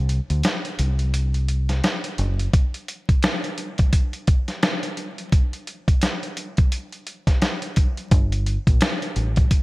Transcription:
0.00 0.19 C2 loud
0.09 closed hi-hat medium
0.30 0.41 D2 medium
0.30 closed hi-hat medium
0.43 snare loud
0.43 closed hi-hat medium
0.65 closed hi-hat soft
0.79 1.80 C2 loud
0.79 closed hi-hat medium
0.99 closed hi-hat medium
1.14 closed hi-hat medium
1.34 closed hi-hat medium
1.48 closed hi-hat medium
1.69 snare soft
1.69 closed hi-hat medium
1.84 snare loud
1.84 closed hi-hat medium
2.04 closed hi-hat medium
2.18 2.47 F#1 medium
2.18 closed hi-hat medium
2.40 closed hi-hat medium
2.53 kick loud
2.53 closed hi-hat medium
2.74 closed hi-hat medium
2.88 closed hi-hat medium
3.09 kick loud
3.09 closed hi-hat medium
3.23 snare loud
3.23 closed hi-hat medium
3.44 closed hi-hat soft
3.58 closed hi-hat medium
3.78 kick loud
3.78 closed hi-hat medium
3.93 kick medium
3.93 closed hi-hat medium
4.13 closed hi-hat medium
4.27 kick loud
4.27 closed hi-hat medium
4.48 snare soft
4.48 closed hi-hat medium
4.63 snare loud
4.63 closed hi-hat medium
4.83 closed hi-hat medium
4.97 closed hi-hat medium
5.18 closed hi-hat medium
5.32 kick loud
5.32 closed hi-hat medium
5.53 closed hi-hat medium
5.67 closed hi-hat medium
5.88 kick loud
5.88 closed hi-hat medium
6.02 snare loud
6.02 closed hi-hat medium
6.23 closed hi-hat soft
6.37 closed hi-hat medium
6.57 kick loud
6.57 closed hi-hat medium
6.72 closed hi-hat medium
6.92 closed hi-hat medium
7.07 closed hi-hat medium
7.27 kick medium
7.27 snare soft
7.27 closed hi-hat medium
7.42 snare loud
7.42 closed hi-hat medium
7.62 closed hi-hat medium
7.76 kick loud
7.76 closed hi-hat medium
7.97 closed hi-hat medium
8.11 8.56 G1 loud
8.11 kick loud
8.11 closed hi-hat medium
8.32 closed hi-hat medium
8.46 closed hi-hat medium
8.67 8.78 A#1 medium
8.67 kick loud
8.67 closed hi-hat medium
8.81 snare loud
8.81 closed hi-hat medium
9.02 closed hi-hat soft
9.16 9.44 A1 medium
9.16 closed hi-hat medium
9.36 kick loud
9.36 closed hi-hat medium
9.51 kick medium
9.51 closed hi-hat medium

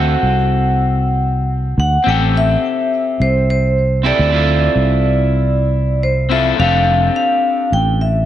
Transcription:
0.00 0.15 D2 loud
0.00 1.74 C4 medium
0.00 1.76 F#4 medium
0.00 1.77 A4 medium
0.00 1.47 F#5 medium
0.23 1.77 C2 medium
1.78 1.96 D2 loud
1.78 2.08 F#5 loud
2.04 2.55 A1 loud
2.04 4.00 C4 medium
2.04 4.02 G4 medium
2.09 4.03 A4 medium
2.09 2.21 G5 loud
2.37 3.24 E5 loud
3.20 4.11 C2 medium
3.20 3.47 C5 loud
3.50 4.07 C5 loud
4.03 4.29 C4 medium
4.03 4.30 E4 medium
4.03 4.30 G4 medium
4.03 4.30 A4 medium
4.03 6.00 D5 loud
4.19 4.67 D2 loud
4.30 6.27 C4 medium
4.30 6.27 E4 medium
4.30 6.28 F4 medium
4.36 6.29 A4 medium
4.75 6.51 C2 medium
6.03 6.29 C5 medium
6.29 6.55 C4 medium
6.29 6.56 E4 medium
6.29 6.56 F4 medium
6.29 6.56 A4 medium
6.29 6.44 E5 medium
6.57 7.08 F1 medium
6.57 8.26 C4 medium
6.57 8.26 D4 medium
6.57 8.26 G4 medium
6.57 7.12 F5 loud
6.63 8.26 A4 medium
7.16 7.69 F5 loud
7.72 8.26 A1 medium
7.72 8.02 G5 loud
8.01 8.26 E5 medium

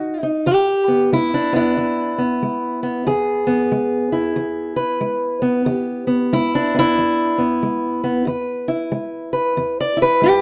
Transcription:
0.00 0.42 D#3 medium
0.00 0.22 D#4 medium
0.00 0.26 F#4 loud
0.23 0.44 D#4 medium
0.46 1.06 E2 medium
0.46 1.12 G4 medium
0.88 1.52 B3 soft
1.13 1.72 G#3 medium
1.13 1.55 E4 medium
1.34 2.20 D4 medium
1.53 2.18 B3 soft
1.53 3.07 E4 medium
1.77 2.37 E2 medium
2.18 2.83 B3 soft
2.43 3.02 G#3 medium
2.83 3.46 B3 soft
3.07 3.67 E2 medium
3.07 4.76 G#4 medium
3.47 5.41 B3 medium
3.72 4.32 G#3 medium
4.12 6.33 E4 medium
4.36 4.96 E2 medium
4.76 5.69 B4 medium
5.01 5.61 G#3 medium
5.42 6.07 B3 medium
5.66 6.26 E2 medium
5.66 6.33 G4 medium
6.07 6.74 B3 soft
6.33 6.92 G#3 medium
6.33 6.76 E4 medium
6.55 7.41 D4 medium
6.75 7.37 B3 soft
6.79 8.28 E4 loud
6.98 7.57 E2 medium
7.38 8.02 B3 soft
7.63 8.22 G#3 medium
8.04 8.25 B3 soft
8.27 8.87 E2 medium
8.27 9.32 B4 soft
8.68 9.96 E4 soft
8.92 9.52 G#3 medium
9.33 9.79 B4 soft
9.57 10.17 E2 medium
9.81 10.01 D5 medium
9.97 10.41 E4 soft
10.02 10.41 B4 medium
10.22 10.41 G#3 medium
10.22 10.41 G4 medium

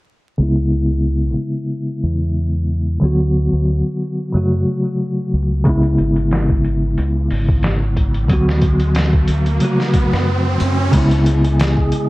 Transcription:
0.38 1.35 C#2 medium
0.38 2.96 C#3 medium
0.38 2.97 G#3 medium
0.38 2.97 B3 medium
0.43 2.98 E4 medium
2.03 2.99 E2 medium
3.00 3.50 D2 medium
3.00 4.27 D3 medium
3.00 4.28 F#3 medium
3.00 4.29 B3 medium
3.05 4.30 F#4 medium
3.53 3.82 D2 medium
4.33 4.63 F#2 medium
4.33 5.59 C#3 medium
4.33 5.60 F#3 medium
4.33 5.61 A3 medium
4.37 5.61 F#4 medium
5.33 5.96 C#2 medium
5.64 8.23 C#3 medium
5.64 8.23 G#3 medium
5.64 8.24 B3 medium
5.64 kick medium
5.64 closed hi-hat medium
5.64 riser medium
5.69 8.25 E4 loud
5.83 closed hi-hat soft
5.98 6.95 G#1 medium
5.98 closed hi-hat medium
6.16 closed hi-hat soft
6.31 snare loud
6.31 closed hi-hat medium
6.49 kick medium
6.64 closed hi-hat medium
6.98 7.27 C#2 loud
6.98 closed hi-hat medium
7.31 8.30 G#1 medium
7.31 open hi-hat medium
7.48 kick medium
7.63 snare medium
7.63 closed hi-hat medium
7.96 kick medium
7.96 closed hi-hat medium
8.14 closed hi-hat soft
8.28 9.26 D2 medium
8.28 9.55 D3 medium
8.28 9.55 F#3 medium
8.28 9.56 B3 medium
8.28 kick medium
8.28 closed hi-hat medium
8.33 9.57 F#4 medium
8.49 snare soft
8.62 kick medium
8.62 closed hi-hat medium
8.80 closed hi-hat soft
8.95 snare loud
8.95 closed hi-hat medium
9.13 kick medium
9.28 9.58 D2 medium
9.28 closed hi-hat medium
9.46 closed hi-hat soft
9.60 10.86 C#3 medium
9.60 10.87 F#3 medium
9.60 10.88 A3 medium
9.60 closed hi-hat medium
9.65 10.89 F#4 medium
9.80 snare soft
9.94 kick medium
9.94 closed hi-hat medium
10.13 10.58 F#2 medium
10.13 snare soft
10.60 10.90 F#2 medium
10.60 closed hi-hat medium
10.92 11.89 C#2 medium
10.92 12.09 C#3 medium
10.92 12.09 G#3 medium
10.92 12.09 B3 medium
10.92 12.09 G#4 medium
10.92 kick loud
10.92 closed hi-hat medium
10.92 crash medium
10.97 12.09 E4 loud
11.11 closed hi-hat soft
11.26 closed hi-hat medium
11.45 closed hi-hat soft
11.60 snare loud
11.60 closed hi-hat medium
11.77 kick medium
11.92 closed hi-hat medium

